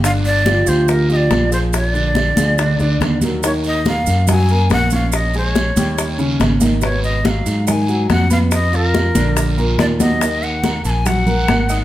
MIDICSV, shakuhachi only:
0, 0, Header, 1, 2, 480
1, 0, Start_track
1, 0, Tempo, 423729
1, 51, Time_signature, 4, 2, 24, 8
1, 13417, End_track
2, 0, Start_track
2, 0, Title_t, "Shakuhachi"
2, 0, Program_c, 0, 77
2, 57, Note_on_c, 0, 77, 94
2, 125, Note_off_c, 0, 77, 0
2, 289, Note_on_c, 0, 74, 93
2, 774, Note_on_c, 0, 72, 80
2, 791, Note_off_c, 0, 74, 0
2, 1015, Note_on_c, 0, 70, 79
2, 1032, Note_off_c, 0, 72, 0
2, 1254, Note_off_c, 0, 70, 0
2, 1262, Note_on_c, 0, 75, 90
2, 1316, Note_on_c, 0, 74, 98
2, 1328, Note_off_c, 0, 75, 0
2, 1705, Note_off_c, 0, 74, 0
2, 1736, Note_on_c, 0, 72, 78
2, 1804, Note_off_c, 0, 72, 0
2, 1984, Note_on_c, 0, 73, 93
2, 2166, Note_off_c, 0, 73, 0
2, 2166, Note_on_c, 0, 74, 93
2, 3615, Note_off_c, 0, 74, 0
2, 3913, Note_on_c, 0, 73, 78
2, 3981, Note_off_c, 0, 73, 0
2, 4156, Note_on_c, 0, 75, 87
2, 4370, Note_off_c, 0, 75, 0
2, 4396, Note_on_c, 0, 77, 87
2, 4833, Note_off_c, 0, 77, 0
2, 4877, Note_on_c, 0, 80, 94
2, 5313, Note_off_c, 0, 80, 0
2, 5353, Note_on_c, 0, 78, 94
2, 5568, Note_off_c, 0, 78, 0
2, 5599, Note_on_c, 0, 77, 90
2, 5839, Note_on_c, 0, 75, 88
2, 5856, Note_off_c, 0, 77, 0
2, 6067, Note_off_c, 0, 75, 0
2, 6093, Note_on_c, 0, 72, 85
2, 6218, Note_off_c, 0, 72, 0
2, 6218, Note_on_c, 0, 73, 85
2, 6989, Note_off_c, 0, 73, 0
2, 7738, Note_on_c, 0, 73, 79
2, 7960, Note_off_c, 0, 73, 0
2, 7972, Note_on_c, 0, 75, 82
2, 8227, Note_on_c, 0, 78, 73
2, 8244, Note_off_c, 0, 75, 0
2, 8265, Note_on_c, 0, 77, 79
2, 8277, Note_off_c, 0, 78, 0
2, 8695, Note_off_c, 0, 77, 0
2, 8702, Note_on_c, 0, 80, 87
2, 9145, Note_off_c, 0, 80, 0
2, 9189, Note_on_c, 0, 78, 89
2, 9405, Note_off_c, 0, 78, 0
2, 9427, Note_on_c, 0, 77, 88
2, 9495, Note_off_c, 0, 77, 0
2, 9665, Note_on_c, 0, 75, 85
2, 9918, Note_on_c, 0, 70, 96
2, 9935, Note_off_c, 0, 75, 0
2, 10865, Note_off_c, 0, 70, 0
2, 11098, Note_on_c, 0, 74, 92
2, 11166, Note_off_c, 0, 74, 0
2, 11332, Note_on_c, 0, 75, 87
2, 11815, Note_on_c, 0, 78, 90
2, 11832, Note_off_c, 0, 75, 0
2, 12283, Note_off_c, 0, 78, 0
2, 12290, Note_on_c, 0, 81, 91
2, 12342, Note_on_c, 0, 80, 99
2, 12354, Note_off_c, 0, 81, 0
2, 12535, Note_on_c, 0, 78, 94
2, 12552, Note_off_c, 0, 80, 0
2, 13417, Note_off_c, 0, 78, 0
2, 13417, End_track
0, 0, End_of_file